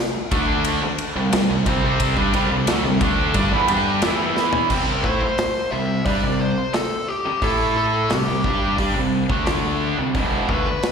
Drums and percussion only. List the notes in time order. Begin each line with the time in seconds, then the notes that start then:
0.31 kick, ride
0.65 ride
0.98 ride
1.33 snare, ride
1.66 kick, ride
2.00 kick, ride
2.17 kick
2.34 ride
2.67 snare, ride
3.01 kick, ride
3.34 kick, ride
3.68 ride
4.02 snare, ride
4.37 snare
4.53 floor tom
4.70 kick, crash
5.04 kick
5.38 snare, open hi-hat
6.06 kick, open hi-hat
6.74 snare, open hi-hat
7.42 kick, open hi-hat
8.10 snare, open hi-hat
8.44 kick
8.78 kick, open hi-hat
9.30 kick
9.46 snare, open hi-hat
10.15 kick, open hi-hat
10.49 kick
10.83 snare, open hi-hat